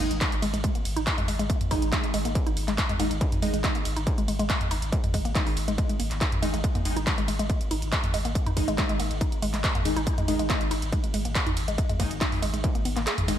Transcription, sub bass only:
0.00 G#1
0.11 G#1
0.32 G#1
0.43 G#1
0.54 G#1
0.75 G#1
0.85 G#1
0.97 G#1
1.18 G#1
1.28 G#1
1.39 G#1
1.61 G#1
1.71 G#1
1.82 G#1
2.04 G#1
2.14 G#1
2.25 G#1
2.46 G#1
2.57 G#1
2.68 G#1
2.89 G#1
3.00 G#1
3.11 G#1
3.32 G#1
3.42 G#1
3.54 G#1
3.75 G#1
3.85 G#1
3.97 G#1
4.18 G#1
4.28 G#1
4.39 G#1
4.61 G#1
4.71 G#1
4.82 G#1
5.04 G#1
5.14 G#1
5.25 G#1
5.47 G#1
5.57 G#1
5.68 G#1
5.89 G#1
6.00 G#1
6.11 G#1
6.32 G#1
6.42 G#1
6.54 G#1
6.75 G#1
6.85 G#1
6.97 G#1
7.18 G#1
7.28 G#1
7.39 G#1
7.61 G#1
7.71 G#1
7.82 G#1
8.04 G#1
8.14 G#1
8.25 G#1
8.46 G#1
8.57 G#1
8.68 G#1
8.89 G#1
9.00 G#1
9.11 G#1
9.32 G#1
9.42 G#1
9.54 G#1
9.75 G#1
9.85 G#1
9.97 G#1
10.18 G#1
10.28 G#1
10.39 G#1
10.61 G#1
10.71 G#1
10.82 G#1
11.04 G#1
11.14 G#1
11.25 G#1
11.47 G#1
11.57 G#1
11.68 G#1
11.89 G#1
12.00 G#1
12.11 G#1
12.32 G#1
12.42 G#1
12.54 G#1
12.75 G#1
12.85 G#1
12.97 G#1
13.18 G#1
13.28 G#1

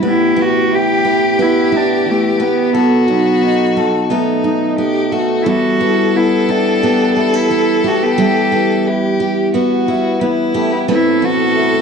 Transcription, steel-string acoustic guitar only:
Already playing: B3
0.03 B4
0.36 E4
1.05 B4
1.39 E4 B4
1.72 E4
2.40 B4
2.75 A4
3.08 D#4
3.77 A4
4.10 B3 D#4 A4
4.44 D#4
4.78 B3
5.12 A4
5.46 G3
5.81 E4
6.49 G4
6.83 B3 E4 G4
7.16 D4
7.34 E4
7.51 B3
7.84 G4
8.18 G3 G4
8.52 E4
9.20 G4
9.54 B3 E4
9.88 E4
10.21 B3
10.54 G4
10.88 A3 B4
11.22 E4

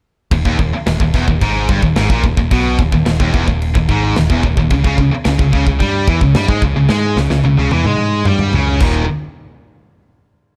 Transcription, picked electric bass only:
0.31 D#1
0.45 D#1
0.59 D#1
0.87 D#1
1.00 D#1
1.14 E1
1.28 D#1
1.42 G#1
1.69 G1
1.83 D#1
1.96 G#1
2.10 A#1
2.24 D#1
2.37 D#1
2.51 B1
2.79 D#1
2.93 D#1
3.06 D#1
3.20 D#1
3.34 E1
3.47 D#1
3.75 D#1
3.89 G#1
4.17 D#1
4.30 E1
4.43 D#1
4.57 D#1
4.71 C#2
4.84 C#2
4.98 C#2
5.26 C#2
5.39 C#2
5.53 C#2
5.66 C#2
5.80 G2
6.08 E2
6.21 C#2
6.35 G2
6.48 G#2
6.62 C#2
6.76 C#2
6.89 G#2
7.16 C#2
7.30 C#2
7.44 C#2
7.58 C#2
7.72 E2
7.85 G#2
8.25 G2
8.53 C#2
8.81 D#1

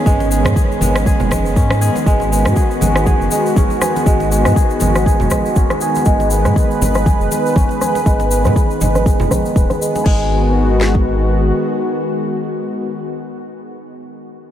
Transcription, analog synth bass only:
0.06 G#1
0.45 G#2
0.81 G#1
1.20 F#1
1.56 G#2
2.06 G#1
2.45 G#2
2.81 G#1
3.20 F#1
3.56 G#1
4.06 G#1
4.45 G#2
4.81 G#1
5.20 F#1
5.56 G#1
6.06 G#1
6.45 G#2
6.81 G#1
7.20 F#1
7.56 G#1
8.06 G#1
8.45 G#2
8.81 G#1
9.20 F#1
9.56 D#1
10.06 G#1

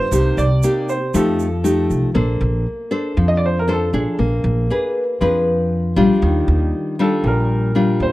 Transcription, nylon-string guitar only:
Already playing: B4
0.12 C3 A#3 D#4 G4
0.64 A#3 D#4 G4
1.14 F3 A3 D#4 G4
1.64 A3 D#4 G4
2.14 A#3 D4 A4 C5
2.91 D4 A4 C5
3.17 F3
3.68 D4 A4 C5
3.94 D4 G#4
4.19 A#3
4.70 D4 G#4 B4
5.21 F3 D4 G#4 B4
5.96 G3 D4 F4
6.22 D#3
6.99 G3 D4 F4
7.24 A#2
7.75 G3 D4 F4

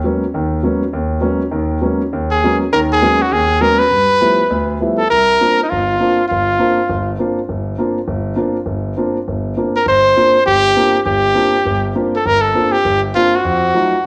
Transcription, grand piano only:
0.04 F#3 G#3 A#3 B3 C#4
0.34 D#2 D#3
0.63 F#3 G#3 A#3 B3 C#4
0.93 D#2
1.21 F#3 G#3 A#3 B3 C#4
1.51 D#2 D#3
1.82 F#3 G#3 A#3 B3 C#4
2.13 D#2
2.44 F#3 G#3 A#3 B3 C#4
2.73 D#2 D#3
3.02 F#3 G#3 A#3 B3 C#4
3.31 D#2
3.61 F#3 G#3 A#3 B3 C#4
3.91 G2
4.21 F3 G3 A3 B3 E4
4.50 D2
4.81 F3 G3 A3 B3 E4
5.11 C2
5.41 A#3 C4 D4 F4
5.72 G1
6.00 A#3 C4 D4 F4
6.31 G1
6.59 A#3 C4 D4 F4
6.89 G1
7.19 A#3 C4 D4 F4
7.49 G1
7.78 A#3 C4 D4 F4
8.08 G1
8.36 A#3 C4 D4 F4
8.66 G1
8.97 A#3 C4 D4 F4
9.28 G1
9.57 A#3 C4 D4 F4
9.86 G1
10.16 A#3 C4 D4 F4
10.47 G1
10.76 A#3 C4 D4 F4
11.06 G1
11.35 A#3 C4 D4 F4
11.65 G1 G2
11.95 A#3 C4 D4 F4
12.26 G1
12.54 A#3 C4 D4 F4
12.85 G1
13.15 A#3 C4 D4 F4
13.45 F2
13.74 F#3 A3 D#4 F4

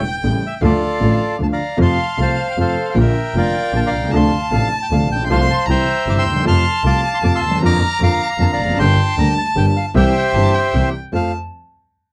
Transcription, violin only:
Already playing: G5
0.61 F5
1.78 F5
2.95 G5
4.12 A5
5.27 C6
5.66 A#5
6.46 A5
7.59 A#5
8.80 A5
9.97 G5
10.34 A5
10.54 G5
11.13 A5

